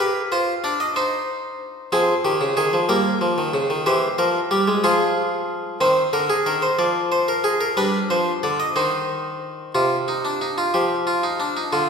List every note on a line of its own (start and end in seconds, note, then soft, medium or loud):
0.00 0.20 G4 medium
0.00 0.20 B4 medium
0.32 0.52 F4 medium
0.32 0.52 C5 medium
0.64 0.84 D4 medium
0.64 0.80 D5 medium
0.80 0.96 D#5 medium
0.96 1.90 D#4 medium
0.96 1.90 C5 medium
1.92 2.12 F3 medium
1.92 2.86 C4 medium
1.92 2.13 G#4 medium
2.25 2.40 D#3 medium
2.25 2.45 G4 medium
2.41 2.57 C#3 medium
2.57 2.73 D#3 medium
2.57 2.77 G#4 medium
2.73 2.89 F3 medium
2.89 3.09 G3 medium
2.89 3.83 A#3 medium
2.89 3.83 A#4 medium
3.21 3.37 F3 medium
3.38 3.53 D#3 medium
3.54 3.69 C#3 medium
3.70 3.86 D#3 medium
3.86 4.06 E3 medium
3.86 4.50 G4 medium
3.86 4.06 C5 medium
4.18 4.39 F3 medium
4.18 4.39 A#4 medium
4.51 4.67 G3 medium
4.51 4.71 G4 medium
4.68 4.83 G#3 medium
4.84 5.78 F3 medium
4.84 5.78 F4 medium
4.84 5.78 G#4 medium
5.81 6.01 D#3 medium
5.81 7.73 C4 medium
5.81 6.01 C5 medium
6.13 6.33 D3 medium
6.13 6.29 A#4 medium
6.30 6.45 G#4 medium
6.46 6.67 D#3 medium
6.46 6.62 A#4 medium
6.62 6.78 C5 medium
6.79 7.74 F3 medium
6.79 6.99 D5 medium
7.12 7.28 C5 medium
7.28 7.44 A#4 medium
7.44 7.60 G#4 medium
7.61 7.77 A#4 medium
7.77 7.97 G3 medium
7.77 8.73 D4 medium
7.77 7.98 B4 loud
8.10 8.31 F3 medium
8.10 8.31 C5 medium
8.43 8.64 D3 medium
8.43 8.59 D5 medium
8.60 8.76 D#5 medium
8.76 9.72 D#3 medium
8.76 9.72 D#4 medium
8.76 9.72 C5 medium
9.75 10.71 C3 medium
9.75 9.95 F4 medium
10.08 10.24 D#4 medium
10.25 10.41 D4 medium
10.41 10.57 D#4 medium
10.58 10.74 F4 medium
10.74 11.69 F3 medium
10.74 10.94 G4 medium
11.07 11.23 F4 medium
11.23 11.39 D#4 medium
11.40 11.56 D4 medium
11.57 11.72 D#4 medium
11.73 11.89 D3 medium
11.73 11.89 F4 medium